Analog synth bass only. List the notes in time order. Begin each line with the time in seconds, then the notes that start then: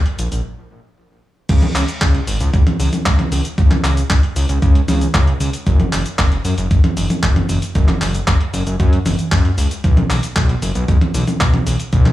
0.19 A#1
0.32 A#1
1.49 C#2
1.75 C#2
2.01 C#2
2.28 G#1
2.41 C#2
2.54 C#2
2.80 C#2
3.06 C#2
3.32 C#2
3.58 C#2
3.84 C#2
4.10 C#2
4.36 C#2
4.49 C#2
4.62 C#2
4.88 C#2
5.14 C#2
5.41 C#2
5.67 F#1
5.93 F#1
6.19 F#1
6.45 F#2
6.58 F#1
6.71 F#1
6.97 F#1
7.23 F#1
7.49 F#1
7.75 F#1
8.01 F#1
8.28 F#1
8.54 F#1
8.67 F#1
8.80 F#2
9.06 F#1
9.32 F#2
9.58 C#2
9.84 B1
10.10 B1
10.36 B1
10.62 F#1
10.75 B1
10.88 B1
11.15 B1
11.41 B1
11.67 B1
11.93 B1